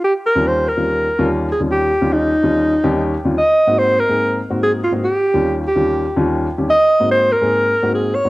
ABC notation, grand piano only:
X:1
M:4/4
L:1/16
Q:1/4=144
K:Ebmix
V:1 name="Grand piano"
z3 [E,,G,DF]3 z [E,,G,DF]3 z [E,,G,DF]3 z [E,,G,DF]- | [E,,G,DF]2 z [E,,G,DF]3 z [E,,G,DF]3 z [E,,G,DG]3 z [E,,G,DF] | z3 [A,,B,C_G]3 z [A,,B,CA]3 z [A,,B,CG]3 z [A,,B,CG] | z3 [E,,G,DF]3 z [E,,G,DF]3 z [E,,G,DF]3 z [E,,G,DG] |
z3 [A,,B,C_G]3 z [A,,B,CA]3 z [A,,B,CG]3 z [A,,B,CG] |]